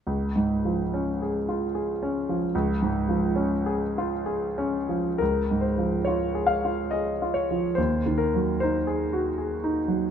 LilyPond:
\new Staff \with { instrumentName = "Grand piano" } { \time 3/4 \key des \major \tempo 4 = 71 << { r2. | r2. | bes'8 c''8 des''8 f''8 ees''8 des''8 | c''8 bes'8 c''4. r8 | } \\ { \tuplet 3/2 { des,8 aes,8 f8 des'8 aes'8 f'8 aes'8 des'8 f8 } | \tuplet 3/2 { des,8 aes,8 f8 des'8 aes'8 f'8 aes'8 des'8 f8 } | \tuplet 3/2 { des,8 aes,8 f8 f'8 aes'8 f'8 aes'8 f'8 f8 } | \tuplet 3/2 { ees,8 ees8 ges8 ees'8 aes'8 ges'8 aes'8 ees'8 ges8 } | } >> }